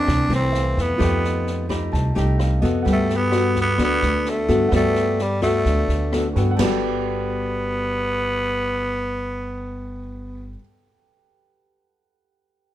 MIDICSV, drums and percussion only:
0, 0, Header, 1, 2, 480
1, 0, Start_track
1, 0, Key_signature, 1, "major"
1, 0, Tempo, 465116
1, 1037, Time_signature, 4, 2, 24, 8
1, 13152, End_track
2, 0, Start_track
2, 0, Title_t, "Drums"
2, 80, Note_on_c, 9, 36, 55
2, 83, Note_on_c, 9, 37, 51
2, 83, Note_on_c, 9, 38, 22
2, 183, Note_off_c, 9, 36, 0
2, 186, Note_off_c, 9, 37, 0
2, 186, Note_off_c, 9, 38, 0
2, 323, Note_on_c, 9, 38, 21
2, 427, Note_off_c, 9, 38, 0
2, 557, Note_on_c, 9, 38, 23
2, 661, Note_off_c, 9, 38, 0
2, 797, Note_on_c, 9, 36, 22
2, 801, Note_on_c, 9, 38, 22
2, 900, Note_off_c, 9, 36, 0
2, 904, Note_off_c, 9, 38, 0
2, 1036, Note_on_c, 9, 36, 51
2, 1036, Note_on_c, 9, 37, 55
2, 1036, Note_on_c, 9, 38, 23
2, 1139, Note_off_c, 9, 36, 0
2, 1139, Note_off_c, 9, 37, 0
2, 1139, Note_off_c, 9, 38, 0
2, 1281, Note_on_c, 9, 38, 20
2, 1385, Note_off_c, 9, 38, 0
2, 1513, Note_on_c, 9, 38, 21
2, 1616, Note_off_c, 9, 38, 0
2, 1755, Note_on_c, 9, 36, 21
2, 1756, Note_on_c, 9, 37, 56
2, 1756, Note_on_c, 9, 38, 21
2, 1858, Note_off_c, 9, 36, 0
2, 1859, Note_off_c, 9, 37, 0
2, 1859, Note_off_c, 9, 38, 0
2, 1996, Note_on_c, 9, 36, 49
2, 1998, Note_on_c, 9, 38, 20
2, 2100, Note_off_c, 9, 36, 0
2, 2101, Note_off_c, 9, 38, 0
2, 2233, Note_on_c, 9, 38, 21
2, 2336, Note_off_c, 9, 38, 0
2, 2472, Note_on_c, 9, 37, 54
2, 2472, Note_on_c, 9, 38, 22
2, 2575, Note_off_c, 9, 37, 0
2, 2575, Note_off_c, 9, 38, 0
2, 2715, Note_on_c, 9, 36, 22
2, 2720, Note_on_c, 9, 38, 20
2, 2819, Note_off_c, 9, 36, 0
2, 2823, Note_off_c, 9, 38, 0
2, 2951, Note_on_c, 9, 38, 20
2, 2953, Note_on_c, 9, 36, 51
2, 3054, Note_off_c, 9, 38, 0
2, 3056, Note_off_c, 9, 36, 0
2, 3193, Note_on_c, 9, 38, 20
2, 3296, Note_off_c, 9, 38, 0
2, 3424, Note_on_c, 9, 37, 56
2, 3424, Note_on_c, 9, 38, 22
2, 3527, Note_off_c, 9, 37, 0
2, 3527, Note_off_c, 9, 38, 0
2, 3665, Note_on_c, 9, 38, 23
2, 3670, Note_on_c, 9, 36, 21
2, 3768, Note_off_c, 9, 38, 0
2, 3773, Note_off_c, 9, 36, 0
2, 3902, Note_on_c, 9, 37, 51
2, 3902, Note_on_c, 9, 38, 21
2, 3910, Note_on_c, 9, 36, 49
2, 4005, Note_off_c, 9, 37, 0
2, 4005, Note_off_c, 9, 38, 0
2, 4013, Note_off_c, 9, 36, 0
2, 4149, Note_on_c, 9, 38, 22
2, 4252, Note_off_c, 9, 38, 0
2, 4387, Note_on_c, 9, 38, 24
2, 4491, Note_off_c, 9, 38, 0
2, 4630, Note_on_c, 9, 38, 21
2, 4632, Note_on_c, 9, 36, 22
2, 4734, Note_off_c, 9, 38, 0
2, 4735, Note_off_c, 9, 36, 0
2, 4870, Note_on_c, 9, 37, 50
2, 4870, Note_on_c, 9, 38, 21
2, 4873, Note_on_c, 9, 36, 50
2, 4973, Note_off_c, 9, 37, 0
2, 4973, Note_off_c, 9, 38, 0
2, 4976, Note_off_c, 9, 36, 0
2, 5107, Note_on_c, 9, 38, 23
2, 5210, Note_off_c, 9, 38, 0
2, 5352, Note_on_c, 9, 38, 23
2, 5455, Note_off_c, 9, 38, 0
2, 5595, Note_on_c, 9, 37, 50
2, 5595, Note_on_c, 9, 38, 22
2, 5596, Note_on_c, 9, 36, 23
2, 5698, Note_off_c, 9, 37, 0
2, 5698, Note_off_c, 9, 38, 0
2, 5699, Note_off_c, 9, 36, 0
2, 5833, Note_on_c, 9, 38, 22
2, 5836, Note_on_c, 9, 36, 50
2, 5936, Note_off_c, 9, 38, 0
2, 5939, Note_off_c, 9, 36, 0
2, 6075, Note_on_c, 9, 38, 20
2, 6178, Note_off_c, 9, 38, 0
2, 6322, Note_on_c, 9, 37, 56
2, 6322, Note_on_c, 9, 38, 22
2, 6425, Note_off_c, 9, 37, 0
2, 6425, Note_off_c, 9, 38, 0
2, 6558, Note_on_c, 9, 36, 21
2, 6561, Note_on_c, 9, 38, 21
2, 6661, Note_off_c, 9, 36, 0
2, 6664, Note_off_c, 9, 38, 0
2, 6801, Note_on_c, 9, 38, 59
2, 6801, Note_on_c, 9, 43, 62
2, 6801, Note_on_c, 9, 49, 55
2, 6904, Note_off_c, 9, 38, 0
2, 6904, Note_off_c, 9, 43, 0
2, 6904, Note_off_c, 9, 49, 0
2, 13152, End_track
0, 0, End_of_file